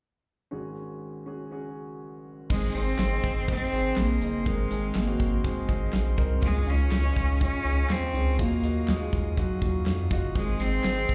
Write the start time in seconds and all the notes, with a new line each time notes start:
0.51 G#1 G#2 C#4 F#4 G#4
1.26 C#4 F#4 G#4
1.51 C#4 F#4 G#4
2.50 G#1 G#2 G#3 C4 D#4 G#4 D#5 C6 D#6, kick, crash
2.74 G#1 C4 D#4 G#4, closed hi-hat
2.98 G#1, snare, clap, closed hi-hat
3.11 C4 D#4 G#4
3.23 G#1, kick, closed hi-hat
3.48 C4 D#4 G#4, kick, closed hi-hat
3.71 G#1 C4 D#4 G#4, closed hi-hat
3.96 A#1 A#3, snare, clap, closed hi-hat
4.21 F#1 C4 D#4 G#4, closed hi-hat
4.45 G#1 G#2 G#3 C4 D#4 A#4 F6, kick, closed hi-hat
4.70 G#1 C4 D#4 G#4, closed hi-hat
4.95 G#1 A#3, snare, clap, closed hi-hat
5.07 C4 D#4 F#4
5.20 G#1, kick, closed hi-hat
5.43 G#3 C4 D#4 G#4, kick, closed hi-hat
5.68 G#1 C4 D#4 G#4, kick, closed hi-hat
5.93 A#1, snare, clap, closed hi-hat
6.17 C2 C4 D#4 A#4, kick, closed hi-hat
6.41 C#2 C#3 C#4 D#4 F4 F5 C#6 D#6, kick, closed hi-hat
6.45 G#3
6.65 C#2 C#4 D#4 F4, closed hi-hat
6.70 C#4
6.91 C#2, snare, clap, closed hi-hat
7.03 C#4 D#4 F4
7.16 C#2, kick, closed hi-hat
7.40 C#4 D#4 F4, kick, closed hi-hat
7.65 C#2 C#4 D#4 G#4, closed hi-hat
7.89 D#2 C4, snare, clap, closed hi-hat
8.14 C#2 C#4 D#4 G#4, closed hi-hat
8.39 D#2 D#3 F#3 A#3 D#4 F4 F#4 A#5, kick, closed hi-hat
8.63 D#2 D#4 F4 F#4, closed hi-hat
8.88 D#2 G#3, snare, clap, closed hi-hat
9.00 D#4 F4 G#4
9.13 D#2, kick, closed hi-hat
9.37 F#3 D#4 F4 F#4, kick, closed hi-hat
9.61 D#2 D#4 F4 F#4, kick, closed hi-hat
9.86 F2, snare, clap, closed hi-hat
10.11 F#1 D#4 F4 F#4, kick, closed hi-hat
10.35 G#1 G#2 G#3 C4 D#4 G#4 D#5 C6, kick, closed hi-hat
10.60 G#1 C4 D#4 G#4, snare, closed hi-hat
10.84 G#1, snare, clap, closed hi-hat
10.96 C4 D#4 G#4
11.09 G#1, kick, closed hi-hat